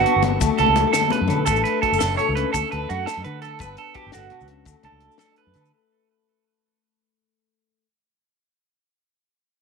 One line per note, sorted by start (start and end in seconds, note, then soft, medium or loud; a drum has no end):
0.00 0.20 G3 medium
0.00 0.41 B3 medium
0.00 0.23 D4 medium
0.00 0.22 F#4 medium
0.00 0.75 F#4 medium
0.06 closed hi-hat soft
0.06 low agogo medium
0.16 0.39 G1 medium
0.23 0.58 D4 medium
0.23 closed hi-hat soft
0.23 muted conga medium
0.23 low conga medium
0.41 0.49 D2 medium
0.41 0.73 D3 medium
0.41 1.46 A3 medium
0.41 kick medium
0.41 closed hi-hat medium
0.41 low agogo medium
0.41 maracas medium
0.58 0.67 C#2 medium
0.58 1.65 D4 medium
0.58 0.91 A4 medium
0.58 closed hi-hat medium
0.58 low agogo medium
0.66 0.84 C#2 medium
0.66 muted conga medium
0.66 low conga soft
0.76 1.45 A4 soft
0.76 closed hi-hat soft
0.76 low conga medium
0.76 maracas soft
0.93 1.11 D3 medium
0.93 1.10 A4 medium
0.93 snare medium
0.93 closed hi-hat medium
0.93 low agogo medium
0.93 maracas medium
1.01 high conga medium
1.10 1.27 C#3 medium
1.10 1.45 B4 medium
1.10 closed hi-hat soft
1.10 muted conga medium
1.20 1.29 F#2 medium
1.20 low conga soft
1.28 1.46 B2 medium
1.28 1.49 D3 medium
1.28 closed hi-hat soft
1.28 low conga medium
1.28 low agogo medium
1.28 maracas soft
1.46 1.63 A1 medium
1.46 1.79 A2 medium
1.46 2.53 A3 medium
1.46 1.63 A4 medium
1.46 kick medium
1.46 closed hi-hat medium
1.46 low agogo medium
1.46 maracas medium
1.56 maracas soft
1.64 2.74 D4 medium
1.64 1.81 B4 medium
1.64 closed hi-hat soft
1.82 1.93 F#4 soft
1.82 1.98 A4 medium
1.82 kick medium
1.82 closed hi-hat soft
1.82 low agogo medium
1.92 2.00 F#1 medium
1.92 2.54 A4 soft
1.99 2.17 F#1 medium
1.99 2.18 A2 medium
1.99 2.17 A4 medium
1.99 snare medium
1.99 closed hi-hat medium
1.99 maracas medium
2.17 2.36 B2 medium
2.17 2.35 C#5 medium
2.17 closed hi-hat soft
2.17 low agogo medium
2.29 2.44 C#2 medium
2.35 2.54 C#3 medium
2.35 2.52 B4 medium
2.35 closed hi-hat soft
2.53 2.62 D2 medium
2.53 2.86 D3 medium
2.53 2.70 A4 medium
2.53 kick medium
2.53 closed hi-hat medium
2.53 low agogo medium
2.53 maracas medium
2.71 2.88 D2 medium
2.71 3.43 D4 medium
2.71 2.88 B4 medium
2.71 closed hi-hat soft
2.71 low agogo medium
2.89 3.05 F#2 medium
2.89 3.06 F#4 medium
2.89 3.59 A4 soft
2.89 closed hi-hat soft
2.89 maracas soft
3.06 3.40 F#3 medium
3.06 3.23 A4 medium
3.06 snare medium
3.06 closed hi-hat medium
3.06 low agogo medium
3.06 maracas medium
3.17 3.24 F#2 medium
3.24 3.61 D3 medium
3.24 3.41 B4 medium
3.24 closed hi-hat soft
3.42 3.78 D4 soft
3.42 3.59 A4 medium
3.42 closed hi-hat soft
3.42 low agogo medium
3.42 maracas soft
3.59 3.76 G1 medium
3.59 3.92 G2 medium
3.59 4.65 B3 medium
3.59 3.77 B4 medium
3.59 kick medium
3.59 closed hi-hat medium
3.59 low agogo medium
3.59 maracas medium
3.77 4.64 D4 medium
3.77 3.95 A4 medium
3.77 closed hi-hat soft
3.94 5.01 F#4 medium
3.94 4.12 G4 medium
3.94 kick medium
3.94 closed hi-hat soft
3.94 low agogo medium
4.06 4.13 G1 medium
4.12 4.30 G1 medium
4.12 4.30 A2 medium
4.12 4.47 F#4 medium
4.12 snare medium
4.12 closed hi-hat medium
4.12 maracas medium
4.30 4.48 B2 medium
4.30 closed hi-hat soft
4.30 low agogo medium
4.41 4.64 C#2 medium
4.41 maracas soft
4.48 4.65 C#3 medium
4.48 closed hi-hat soft
4.65 4.74 D2 medium
4.65 4.98 D3 medium
4.65 7.85 A3 soft
4.65 kick medium
4.65 closed hi-hat medium
4.65 low agogo medium
4.65 maracas medium
4.83 4.92 C#2 medium
4.83 5.54 D4 medium
4.83 5.18 A4 medium
4.83 closed hi-hat soft
4.83 low agogo medium
4.92 5.08 C#2 medium
5.00 5.71 A4 soft
5.00 closed hi-hat soft
5.12 maracas soft
5.18 5.51 F#3 medium
5.18 5.36 A4 medium
5.18 snare medium
5.18 closed hi-hat medium
5.18 low agogo medium
5.18 maracas medium
5.36 5.71 B4 medium
5.36 closed hi-hat soft
5.47 5.54 F#2 medium
5.54 5.71 D3 medium
5.54 5.71 D4 soft
5.54 closed hi-hat soft
5.54 low agogo medium
5.54 maracas soft
5.65 maracas soft